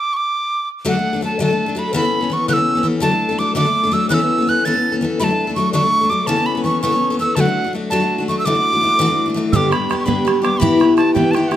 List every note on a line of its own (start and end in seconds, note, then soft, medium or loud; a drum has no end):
0.00 0.14 D6 medium
0.13 0.18 C#6 medium
0.13 0.69 D6 medium
0.85 0.95 D3 medium
0.85 0.95 F#3 medium
0.85 0.95 A3 medium
0.85 0.95 D4 medium
0.85 0.94 A4 medium
0.85 1.21 F#5 medium
0.95 1.15 A3 soft
0.95 1.13 D4 soft
0.95 1.12 A4 soft
1.13 1.21 A3 soft
1.13 1.22 D4 soft
1.13 1.22 A4 soft
1.21 1.39 F#3 soft
1.21 1.39 A3 medium
1.21 1.40 D4 soft
1.21 1.41 A4 medium
1.25 1.40 A5 medium
1.39 1.49 D3 medium
1.39 1.49 F#3 medium
1.39 1.49 A3 medium
1.39 1.50 D4 medium
1.39 1.48 A4 medium
1.43 1.80 A5 medium
1.49 1.68 A3 soft
1.49 1.67 D4 soft
1.49 1.65 A4 soft
1.66 1.75 A3 soft
1.66 1.76 D4 soft
1.66 1.76 A4 medium
1.75 1.93 F#3 medium
1.75 1.94 A3 medium
1.75 1.94 D4 medium
1.75 1.95 A4 medium
1.75 1.95 B5 medium
1.93 2.03 C#3 medium
1.93 2.04 E3 medium
1.93 2.04 B3 medium
1.93 2.03 C#4 medium
1.93 2.01 A4 medium
1.93 2.35 B5 medium
2.02 2.22 B3 soft
2.02 2.21 C#4 soft
2.02 2.19 A4 soft
2.21 2.30 B3 soft
2.21 2.31 C#4 soft
2.21 2.30 A4 soft
2.30 2.48 E3 soft
2.30 2.48 B3 soft
2.30 2.49 C#4 medium
2.30 2.49 C#6 medium
2.34 2.49 A4 soft
2.48 2.58 C#3 medium
2.48 2.58 E3 medium
2.48 2.58 B3 medium
2.48 2.57 C#4 medium
2.48 2.55 A4 medium
2.48 2.54 F#6 medium
2.53 2.74 A4 medium
2.53 2.87 E6 medium
2.58 2.77 B3 soft
2.58 2.76 C#4 soft
2.75 2.83 B3 soft
2.75 2.84 C#4 soft
2.75 2.84 A4 soft
2.83 3.01 E3 medium
2.83 3.01 B3 medium
2.83 3.02 C#4 medium
2.83 3.02 A4 medium
3.00 3.11 D3 medium
3.00 3.11 F#3 medium
3.00 3.12 A3 medium
3.00 3.10 D4 loud
3.00 3.08 A4 medium
3.00 3.40 A5 loud
3.10 3.31 A3 soft
3.10 3.30 D4 soft
3.10 3.28 A4 soft
3.29 3.39 A3 soft
3.29 3.39 D4 soft
3.29 3.38 A4 soft
3.39 3.54 F#3 medium
3.39 3.55 A3 medium
3.39 3.55 D4 medium
3.39 3.56 A4 soft
3.39 3.55 D6 medium
3.55 3.65 D3 medium
3.55 3.66 F#3 medium
3.55 3.66 A3 medium
3.55 3.65 D4 medium
3.55 3.63 A4 medium
3.55 3.95 D6 medium
3.64 3.85 A3 soft
3.64 3.84 D4 soft
3.64 3.82 A4 soft
3.83 3.92 A3 soft
3.83 3.93 D4 soft
3.83 3.93 A4 medium
3.92 4.10 F#3 medium
3.92 4.10 A3 medium
3.92 4.11 D4 medium
3.92 4.11 A4 medium
3.92 4.09 E6 medium
4.09 4.19 C#3 medium
4.09 4.20 E3 medium
4.09 4.20 B3 medium
4.09 4.20 C#4 medium
4.09 4.19 A4 medium
4.09 4.15 F#6 medium
4.14 4.50 E6 medium
4.20 4.40 B3 soft
4.20 4.39 C#4 soft
4.20 4.37 A4 soft
4.38 4.47 B3 soft
4.38 4.48 C#4 soft
4.38 4.47 A4 soft
4.47 4.64 E3 soft
4.47 4.65 B3 medium
4.47 4.66 C#4 medium
4.47 4.66 A4 medium
4.47 4.67 F#6 medium
4.65 4.75 C#3 medium
4.65 4.75 E3 medium
4.65 4.75 B3 medium
4.65 4.74 C#4 medium
4.65 4.72 A4 medium
4.65 4.95 A6 loud
4.74 4.94 B3 soft
4.74 4.93 C#4 soft
4.74 4.91 A4 medium
4.92 5.01 B3 soft
4.92 5.02 C#4 soft
4.92 5.01 A4 soft
5.01 5.19 E3 medium
5.01 5.19 B3 medium
5.01 5.20 C#4 soft
5.01 5.21 A4 medium
5.20 5.29 D3 medium
5.20 5.29 F#3 medium
5.20 5.29 A3 medium
5.20 5.29 D4 medium
5.20 5.27 A4 medium
5.20 5.25 B5 medium
5.24 5.54 A5 medium
5.28 5.49 A3 soft
5.28 5.48 D4 soft
5.28 5.46 A4 soft
5.47 5.57 A3 soft
5.47 5.57 D4 soft
5.47 5.56 A4 soft
5.56 5.73 F#3 medium
5.56 5.73 A3 soft
5.56 5.74 D4 soft
5.56 5.72 C#6 medium
5.60 5.74 A4 medium
5.73 5.83 D3 medium
5.73 5.83 F#3 medium
5.73 5.83 A3 medium
5.73 5.83 D4 medium
5.73 5.81 A4 medium
5.73 6.11 C#6 medium
5.83 6.03 A3 soft
5.83 6.02 D4 soft
5.83 6.00 A4 soft
6.01 6.10 A3 soft
6.01 6.11 D4 soft
6.01 6.10 A4 soft
6.09 6.27 F#3 soft
6.09 6.28 A3 medium
6.09 6.28 D4 medium
6.09 6.28 A4 medium
6.09 6.28 D6 medium
6.27 6.37 C#3 medium
6.27 6.37 E3 medium
6.27 6.38 B3 medium
6.27 6.37 C#4 medium
6.27 6.35 A4 medium
6.27 6.48 A5 loud
6.36 6.57 B3 soft
6.36 6.54 A4 soft
6.46 6.64 B5 medium
6.55 6.64 B3 soft
6.55 6.65 C#4 soft
6.55 6.64 A4 soft
6.64 6.82 E3 soft
6.64 6.82 B3 soft
6.64 6.83 C#4 medium
6.64 6.83 A4 soft
6.64 6.81 C#6 medium
6.82 6.92 C#3 medium
6.82 6.92 E3 medium
6.82 6.92 B3 medium
6.82 6.93 C#4 medium
6.82 6.91 A4 medium
6.82 7.16 C#6 medium
6.92 7.12 B3 soft
6.92 7.11 C#4 soft
6.92 7.09 A4 soft
7.10 7.18 B3 soft
7.10 7.20 C#4 soft
7.10 7.19 A4 medium
7.19 7.36 E3 medium
7.19 7.37 B3 medium
7.19 7.37 C#4 medium
7.19 7.38 A4 medium
7.19 7.37 E6 medium
7.35 7.46 D3 medium
7.35 7.46 F#3 medium
7.35 7.46 A3 medium
7.35 7.46 D4 medium
7.35 7.44 F#4 medium
7.35 7.41 A5 medium
7.40 7.72 F#5 medium
7.45 7.65 A3 soft
7.45 7.65 D4 soft
7.45 7.63 F#4 soft
7.64 7.73 A3 soft
7.64 7.74 D4 soft
7.64 7.73 F#4 soft
7.73 7.90 F#3 soft
7.73 7.91 A3 soft
7.73 7.91 D4 medium
7.73 7.92 F#4 medium
7.90 8.00 D3 medium
7.90 8.01 F#3 medium
7.90 8.01 A3 medium
7.90 8.01 D4 medium
7.90 7.99 F#4 medium
7.90 8.24 A5 medium
8.00 8.20 A3 soft
8.00 8.19 D4 soft
8.00 8.17 F#4 soft
8.18 8.28 A3 soft
8.18 8.28 D4 soft
8.18 8.27 F#4 medium
8.28 8.45 F#3 medium
8.28 8.46 A3 medium
8.28 8.46 D4 medium
8.28 8.46 F#4 medium
8.28 8.38 C#6 medium
8.39 8.47 E6 medium
8.45 8.55 D3 medium
8.45 8.55 E3 medium
8.45 8.55 A3 medium
8.45 8.55 D4 medium
8.45 8.54 F#4 medium
8.45 9.27 D6 loud
8.55 8.74 A3 soft
8.55 8.73 D4 soft
8.55 8.72 F#4 soft
8.73 8.82 A3 soft
8.73 8.82 D4 soft
8.73 8.81 F#4 soft
8.81 8.98 E3 soft
8.81 9.00 A3 soft
8.81 9.00 D4 medium
8.85 9.00 F#4 medium
8.99 9.08 D3 medium
8.99 9.09 E3 medium
8.99 9.09 A3 medium
8.99 9.09 D4 loud
8.99 9.06 F#4 loud
9.08 9.28 A3 soft
9.08 9.27 D4 medium
9.08 9.25 F#4 medium
9.26 9.35 A3 soft
9.26 9.36 D4 soft
9.26 9.35 F#4 medium
9.34 9.52 E3 medium
9.34 9.53 A3 medium
9.34 9.54 D4 medium
9.34 9.54 F#4 medium
9.52 9.72 G2 medium
9.52 9.72 D3 medium
9.52 9.73 G3 medium
9.52 9.73 B3 medium
9.52 9.72 D4 medium
9.52 9.71 G4 medium
9.52 9.73 D6 medium
9.52 9.57 E6 medium
9.52 bodhran medium
9.72 9.88 G3 soft
9.72 9.89 B3 soft
9.72 9.90 D4 soft
9.72 9.89 G4 medium
9.72 9.98 B5 medium
9.72 bodhran medium
9.89 10.06 G3 soft
9.89 10.06 B3 soft
9.89 10.05 D4 medium
9.89 10.04 G4 medium
9.89 bodhran medium
9.99 10.07 C#6 medium
10.05 10.27 G2 medium
10.05 10.27 D3 soft
10.05 10.24 G3 medium
10.05 10.25 B3 medium
10.05 10.26 D4 medium
10.05 10.25 G4 medium
10.05 10.42 B5 medium
10.05 bodhran medium
10.25 10.43 G3 medium
10.25 10.43 B3 medium
10.25 10.42 D4 soft
10.25 10.40 G4 medium
10.25 bodhran medium
10.42 10.60 B3 soft
10.42 10.61 D4 medium
10.42 10.60 G4 soft
10.42 10.61 D6 medium
10.42 bodhran medium
10.46 10.59 G3 soft
10.60 10.80 E3 medium
10.60 10.80 B3 medium
10.60 10.81 E4 loud
10.60 10.79 G4 loud
10.60 10.96 B5 medium
10.60 bodhran medium
10.80 10.97 B3 soft
10.80 10.98 E4 soft
10.80 10.98 G4 soft
10.80 bodhran medium
10.97 11.15 E3 soft
10.97 11.16 B3 soft
10.97 11.14 E4 medium
10.97 11.14 G4 soft
10.97 11.14 A5 medium
10.97 bodhran medium
11.14 11.32 E3 medium
11.14 11.33 B3 medium
11.14 11.35 E4 medium
11.14 11.34 G4 medium
11.14 11.32 G5 medium
11.14 bodhran medium
11.31 11.51 E3 medium
11.31 11.52 B3 medium
11.31 11.36 A5 medium
11.31 bodhran soft
11.35 11.51 E4 medium
11.35 11.50 G4 medium
11.35 11.49 G5 medium
11.48 11.56 G4 medium
11.48 11.53 F#5 medium
11.48 bodhran medium
11.52 11.56 E4 soft
11.52 11.56 G5 medium